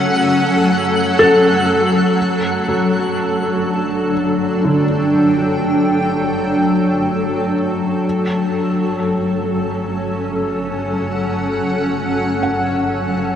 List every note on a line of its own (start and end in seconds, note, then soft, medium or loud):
0.00 13.36 F#3 medium
0.00 2.18 C#4 medium
0.00 13.36 A4 medium
0.00 1.15 F#5 medium
0.00 2.18 F#5 medium
0.00 2.18 F#6 medium
1.19 4.11 A4 medium
2.18 8.00 G1 medium
2.61 8.04 D4 medium
2.69 4.84 F#3 soft
3.88 8.05 G5 medium
4.65 7.53 D3 soft
8.05 13.36 G1 medium
8.42 13.36 C#4 medium
9.90 13.36 F#5 medium
12.43 13.36 F#5 medium